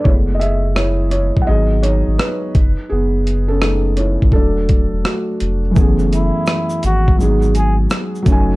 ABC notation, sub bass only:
X:1
M:4/4
L:1/16
Q:"Swing 16ths" 1/4=84
K:F#m
V:1 name="Sub bass" clef=bass
F,,,6- F,,, B,,, G,,,3 G,,, z2 F,,, z | F,,,6- F,,, G,,, E,,,3 E,,, z2 ^E,,,2 | F,,,3 z3 G,,,2 G,,,4 z2 F,,,2 |]